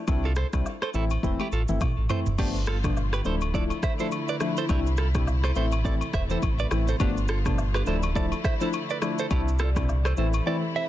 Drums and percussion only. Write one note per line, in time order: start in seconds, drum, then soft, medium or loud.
0.07 kick loud
0.07 high agogo medium
0.07 shaker medium
0.36 cross-stick loud
0.36 shaker medium
0.53 kick loud
0.53 cross-stick medium
0.53 high agogo medium
0.53 shaker medium
0.66 low woodblock medium
0.66 shaker medium
0.82 cross-stick medium
0.82 high agogo medium
0.94 shaker medium
1.10 high agogo medium
1.10 shaker medium
1.23 kick medium
1.23 high tom medium
1.23 shaker medium
1.40 high tom medium
1.40 high agogo medium
1.52 shaker medium
1.68 mid tom medium
1.68 shaker medium
1.81 kick medium
1.81 mid tom medium
1.81 high agogo medium
1.81 low woodblock medium
1.81 shaker medium
2.09 floor tom loud
2.09 high agogo medium
2.09 shaker medium
2.26 floor tom medium
2.26 shaker medium
2.38 kick loud
2.38 crash medium
2.38 high agogo medium
2.38 shaker medium
2.56 shaker medium
2.66 cross-stick loud
2.66 shaker soft
2.84 kick loud
2.84 cross-stick medium
2.84 mid tom loud
2.84 high agogo medium
2.84 shaker loud
2.97 low woodblock medium
2.97 shaker medium
3.13 cross-stick medium
3.13 high agogo medium
3.13 shaker soft
3.25 shaker medium
3.41 high agogo medium
3.41 shaker medium
3.54 kick medium
3.54 shaker medium
3.70 high agogo medium
3.70 shaker medium
3.83 kick medium
3.83 cross-stick medium
3.83 shaker medium
3.99 shaker medium
4.12 high agogo medium
4.12 shaker medium
4.28 shaker soft
4.40 cross-stick medium
4.40 high agogo medium
4.40 shaker medium
4.57 shaker loud
4.69 kick loud
4.69 high agogo medium
4.69 shaker medium
4.87 shaker medium
4.97 cross-stick loud
4.97 shaker medium
5.15 kick loud
5.15 cross-stick medium
5.15 mid tom medium
5.15 high agogo medium
5.15 shaker loud
5.27 low woodblock medium
5.27 shaker medium
5.44 cross-stick medium
5.44 high agogo medium
5.44 shaker soft
5.55 shaker medium
5.72 high agogo medium
5.72 shaker medium
5.85 kick medium
5.85 shaker medium
6.01 high agogo medium
6.01 shaker medium
6.13 kick medium
6.13 cross-stick medium
6.13 shaker medium
6.30 shaker medium
6.42 kick medium
6.42 high agogo medium
6.42 shaker medium
6.59 shaker soft
6.71 cross-stick medium
6.71 high agogo medium
6.71 shaker medium
6.88 shaker loud
7.00 kick loud
7.00 high agogo medium
7.00 shaker medium
7.17 shaker medium
7.28 cross-stick loud
7.28 shaker medium
7.45 kick medium
7.45 cross-stick medium
7.45 mid tom loud
7.45 high agogo medium
7.45 shaker loud
7.58 low woodblock medium
7.58 shaker medium
7.74 cross-stick medium
7.74 high agogo medium
7.74 shaker soft
7.86 shaker medium
8.03 high agogo medium
8.03 shaker medium
8.16 kick loud
8.16 shaker medium
8.32 high agogo medium
8.32 shaker medium
8.44 kick loud
8.44 cross-stick medium
8.44 shaker medium
8.61 shaker loud
8.73 high agogo medium
8.73 shaker medium
8.90 shaker soft
9.02 cross-stick medium
9.02 high agogo medium
9.02 shaker medium
9.19 shaker loud
9.31 kick loud
9.31 high agogo medium
9.31 shaker medium
9.48 shaker medium
9.59 cross-stick loud
9.59 shaker medium
9.76 kick loud
9.76 cross-stick medium
9.76 mid tom loud
9.76 high agogo medium
9.76 shaker loud
9.89 low woodblock medium
9.89 shaker medium
10.05 cross-stick medium
10.05 high agogo medium
10.05 shaker soft
10.17 shaker medium
10.33 high agogo medium
10.33 shaker medium